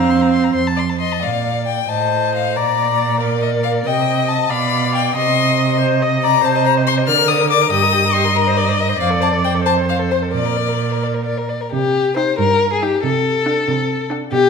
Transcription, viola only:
0.00 0.54 C4 medium
1.89 2.59 C5 soft
2.57 3.21 D5 soft
3.21 3.87 A#4 soft
3.86 4.51 D#5 medium
4.50 5.16 D5 medium
5.17 5.80 D#5 medium
5.81 6.04 C5 medium
6.02 6.25 D#5 medium
6.24 6.44 D5 medium
6.45 7.09 C5 medium
7.07 7.71 A#4 medium
7.71 8.97 D#5 medium
9.00 9.64 D5 medium
9.65 10.32 C5 medium
10.33 11.37 A#4 soft
12.17 12.33 D#4 medium
12.82 12.98 D#4 medium
13.46 13.62 D4 medium
14.10 14.27 D4 soft

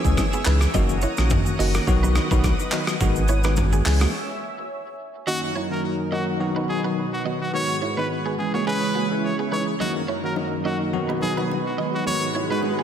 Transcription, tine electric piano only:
0.05 0.25 E3 medium
0.05 0.25 G#3 medium
0.05 0.25 C#4 medium
0.05 0.26 G#4 medium
0.46 0.68 E3 medium
0.46 0.68 G#3 medium
0.46 0.68 C#4 medium
0.46 0.68 G#4 medium
0.74 0.96 D#3 medium
0.74 0.96 A#3 medium
0.74 0.96 C#4 medium
0.74 0.96 F#4 loud
1.18 1.56 D#3 medium
1.18 1.56 A#3 medium
1.18 1.56 C#4 medium
1.18 1.56 F#4 medium
1.59 1.85 D#3 medium
1.59 1.85 A#3 medium
1.59 1.85 C#4 medium
1.59 1.86 F#4 medium
1.87 2.27 D#3 loud
1.87 2.27 F#3 medium
1.87 2.28 B3 medium
1.87 2.28 F#4 loud
2.31 2.52 D#3 medium
2.31 2.52 F#3 medium
2.31 2.52 B3 medium
2.31 2.52 F#4 medium
2.72 2.94 D#3 medium
2.72 2.94 F#3 medium
2.72 2.94 B3 medium
2.72 2.94 F#4 medium
3.00 3.22 D#3 medium
3.00 3.22 G#3 medium
3.00 3.23 B3 medium
3.00 3.23 F#4 loud
3.44 3.82 D#3 medium
3.44 3.82 G#3 medium
3.44 3.83 B3 medium
3.44 3.83 F#4 medium
3.85 4.12 E3 medium
3.85 4.12 G#3 medium
3.85 4.12 C#4 medium
3.85 4.12 G#4 medium
5.27 5.49 D#3 medium
5.27 5.49 A#3 medium
5.27 5.49 C#4 medium
5.27 5.49 F#4 loud
5.71 6.09 D#3 medium
5.71 6.09 A#3 medium
5.71 6.09 C#4 medium
5.71 6.09 F#4 medium
6.12 6.38 D#3 medium
6.12 6.38 A#3 medium
6.12 6.38 C#4 medium
6.12 6.38 F#4 medium
6.40 6.80 D#3 medium
6.40 6.80 F#3 medium
6.40 6.80 B3 medium
6.40 6.80 F#4 medium
6.84 7.05 D#3 medium
6.84 7.05 F#3 medium
6.84 7.05 B3 medium
6.84 7.05 F#4 medium
7.25 7.47 D#3 medium
7.25 7.47 F#3 medium
7.25 7.47 B3 medium
7.25 7.47 F#4 medium
7.53 7.75 D#3 medium
7.53 7.75 G#3 medium
7.53 7.75 B3 medium
7.53 7.76 F#4 medium
7.97 8.35 D#3 medium
7.97 8.35 G#3 medium
7.97 8.35 B3 medium
7.97 8.35 F#4 medium
8.38 8.64 E3 medium
8.38 8.65 G#3 medium
8.38 8.65 C#4 medium
8.38 8.65 G#4 medium
8.66 9.07 E3 medium
8.66 9.07 G#3 medium
8.66 9.07 C#4 medium
8.66 9.07 G#4 loud
9.10 9.31 E3 medium
9.10 9.31 G#3 medium
9.10 9.31 C#4 medium
9.10 9.31 G#4 medium
9.51 9.73 E3 medium
9.51 9.73 G#3 medium
9.51 9.74 C#4 medium
9.51 9.74 G#4 medium
9.80 10.02 D#3 medium
9.80 10.02 A#3 medium
9.80 10.02 C#4 medium
9.80 10.02 F#4 medium
10.23 10.62 D#3 medium
10.23 10.62 A#3 medium
10.23 10.62 C#4 medium
10.23 10.62 F#4 medium
10.65 10.91 D#3 medium
10.65 10.91 A#3 medium
10.65 10.91 C#4 medium
10.65 10.91 F#4 medium
10.93 11.33 D#3 medium
10.93 11.33 F#3 medium
10.93 11.33 B3 medium
10.93 11.33 F#4 loud
11.37 11.57 D#3 medium
11.37 11.57 F#3 medium
11.37 11.58 B3 medium
11.37 11.58 F#4 medium
11.78 12.00 D#3 medium
11.78 12.00 F#3 medium
11.78 12.00 B3 medium
11.78 12.00 F#4 medium
12.06 12.28 D#3 medium
12.06 12.28 G#3 medium
12.06 12.28 B3 medium
12.06 12.28 F#4 loud
12.50 12.83 D#3 medium
12.50 12.83 G#3 medium
12.50 12.83 B3 medium
12.50 12.83 F#4 medium

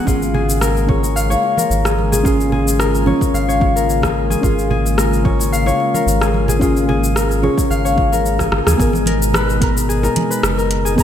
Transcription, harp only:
0.00 0.13 F#4 medium
0.00 0.34 G#4 loud
0.00 0.48 B4 medium
0.00 0.91 D#5 medium
0.00 0.13 F#5 medium
0.07 2.24 F4 medium
0.34 1.84 G#4 medium
0.62 1.57 A#4 medium
0.89 1.30 C#5 medium
1.16 2.82 F5 loud
1.30 3.07 C#5 medium
1.57 2.79 A#4 medium
1.85 2.12 G#4 medium
2.12 2.52 G#4 medium
2.25 4.43 F4 medium
2.52 4.03 G#4 medium
2.79 3.75 A#4 medium
3.07 3.48 C#5 medium
3.34 5.01 F5 loud
3.48 5.25 C#5 medium
3.76 4.97 A#4 medium
4.03 4.30 G#4 medium
4.30 4.70 G#4 medium
4.43 6.61 F4 medium
4.70 6.21 G#4 medium
4.98 5.94 A#4 medium
5.25 5.66 C#5 medium
5.52 7.19 F5 medium
5.67 7.43 C#5 medium
5.94 7.15 A#4 medium
6.21 6.48 G#4 medium
6.49 6.88 G#4 medium
6.61 9.14 F4 medium
6.89 8.39 G#4 medium
7.16 8.12 A#4 medium
7.43 7.84 C#5 medium
7.70 9.37 F5 medium
7.85 9.76 C#5 medium
8.12 9.07 A#4 medium
8.40 8.66 G#4 medium
8.67 8.79 G#4 medium
8.80 9.88 G#4 medium
9.07 9.40 A#4 medium
9.34 9.68 B4 loud
9.62 10.03 A#4 medium
9.89 10.85 G#4 medium
10.03 10.36 A#4 medium
10.30 10.64 B4 medium
10.58 11.03 A#4 medium
10.85 10.97 G#4 loud
10.98 11.03 G#4 medium

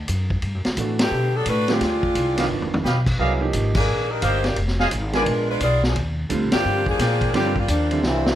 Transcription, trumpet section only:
2.38 2.46 G4 medium
2.38 2.46 B4 medium
2.38 2.46 D#5 medium
2.38 2.46 F5 medium
2.84 2.99 G4 medium
2.84 2.99 B4 medium
2.84 2.99 D#5 medium
2.84 2.99 F5 medium
3.18 3.34 A#4 medium
3.18 3.33 D5 medium
3.18 3.33 D#5 medium
3.18 3.33 F5 medium
4.22 4.37 A#4 medium
4.22 4.37 D5 medium
4.22 4.37 D#5 medium
4.22 4.37 F5 medium
4.79 4.88 G#4 loud
4.79 4.88 C5 medium
4.79 4.88 D#5 medium
4.79 4.87 F5 loud
5.14 5.22 A#4 medium
5.14 5.23 B4 medium
5.14 5.22 D5 medium
5.14 5.22 G#5 loud
6.99 7.51 A#4 medium
6.99 7.51 D5 medium
6.99 7.51 F5 medium
6.99 7.51 G5 medium

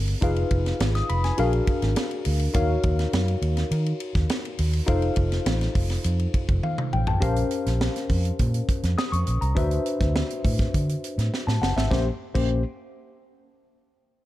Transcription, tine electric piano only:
0.00 0.17 C4 medium
0.00 0.18 G4 medium
0.00 0.18 G#4 medium
0.00 0.18 A#4 medium
0.00 0.19 F5 medium
0.21 1.36 D#4 medium
0.21 1.36 F4 medium
0.21 1.37 G#4 medium
0.21 1.37 B4 medium
0.21 1.37 F5 medium
0.95 1.09 D#6 medium
1.09 1.23 B5 medium
1.24 1.52 G#5 medium
1.38 2.53 D4 medium
1.38 2.53 F#4 medium
1.38 2.53 G#4 medium
1.38 2.53 A#4 medium
1.38 2.54 F5 medium
2.53 4.84 D#4 medium
2.53 4.84 F#4 medium
2.53 4.84 A#4 medium
2.53 4.85 C#5 medium
2.53 4.85 F5 loud
4.86 7.17 D#4 medium
4.86 7.18 F4 medium
4.86 7.18 A4 medium
4.86 7.18 C5 medium
4.86 6.61 F5 medium
6.63 6.92 F5 medium
6.93 7.07 G5 medium
7.07 7.36 A5 medium
7.20 9.52 C#4 medium
7.20 9.52 G4 medium
7.20 9.52 A#4 medium
7.20 9.52 C5 medium
7.20 9.53 F5 medium
8.98 9.12 D#6 medium
9.12 9.40 C#6 medium
9.41 9.69 A#5 medium
9.55 11.86 D4 medium
9.55 11.87 F#4 medium
9.55 11.87 B4 medium
9.55 11.87 C5 medium
9.55 11.29 E5 medium
11.47 11.61 A5 medium
11.62 11.76 F#5 medium
11.77 12.04 E5 medium
11.91 12.07 A#3 medium
11.91 12.07 C#4 medium
11.91 12.07 G4 medium
11.91 12.07 C5 medium
12.35 12.62 A#3 medium
12.35 12.62 C#4 medium
12.35 12.62 G4 medium
12.35 12.62 C5 medium

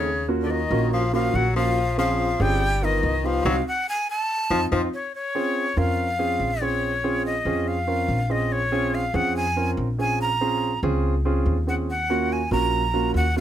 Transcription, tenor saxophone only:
0.00 0.26 C#3 medium
0.43 0.53 D3 medium
0.51 0.93 D#3 medium
0.93 1.12 F3 medium
1.14 1.38 F3 medium
1.36 1.55 F#3 medium
1.56 1.95 F3 medium
1.98 2.42 F3 medium
2.41 2.84 G3 medium
2.83 3.27 D#3 medium
3.25 3.45 F3 medium
3.45 3.55 F#3 loud
4.51 4.61 F3 medium
4.72 4.82 F3 medium

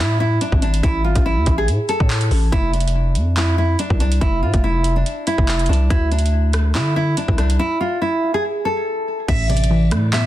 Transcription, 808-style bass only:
0.00 0.39 A2 loud
0.52 0.82 G#1 loud
0.83 1.06 A1 loud
1.05 1.15 G#1 loud
1.16 1.38 A1 loud
1.37 1.46 E2 loud
1.47 1.69 A1 loud
1.68 1.79 A2 loud
2.00 2.30 A2 loud
2.31 2.52 A1 loud
2.52 3.17 F1 loud
3.16 3.76 F2 loud
3.90 4.20 C2 loud
4.42 4.53 A2 loud
4.54 5.04 F1 loud
5.38 5.68 F1 loud
5.69 5.90 C2 loud
5.90 6.76 D2 loud
6.75 7.15 D3 loud
7.28 7.58 C2 loud
9.28 9.93 A1 loud
9.92 10.26 A2 loud

